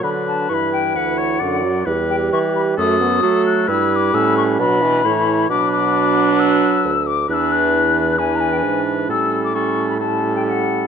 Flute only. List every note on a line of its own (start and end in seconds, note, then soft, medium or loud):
0.04 0.10 B5 loud
0.27 0.51 A5 loud
0.49 0.55 C#6 loud
0.54 0.72 B5 loud
0.73 0.98 G5 loud
0.96 1.87 F#5 medium
2.10 2.16 G5 loud
2.33 2.39 C#6 loud
2.56 2.62 B5 loud
2.78 3.45 D#6 loud
3.46 3.70 F#6 loud
3.68 3.91 E6 loud
3.91 3.97 E6 loud
3.96 4.16 D6 loud
4.15 4.37 E6 loud
4.37 4.43 C#6 loud
4.60 5.48 B5 loud
5.50 5.71 D6 loud
5.72 6.41 D6 loud
6.40 7.08 E6 loud
7.07 7.29 D6 loud
7.30 7.54 E6 loud
7.30 7.35 F#6 loud
7.52 8.20 F#6 loud
8.19 8.37 G#5 loud
8.36 8.42 A#5 loud
8.41 8.54 G#5 loud
8.53 8.59 G5 loud
8.58 8.82 G#5 loud
9.10 9.41 E6 loud
9.44 9.56 D6 loud
9.55 9.89 C#6 loud
9.90 9.95 B5 medium
10.00 10.34 A5 loud
10.36 10.45 G5 medium
10.46 10.87 F#5 loud
10.46 10.50 G#5 medium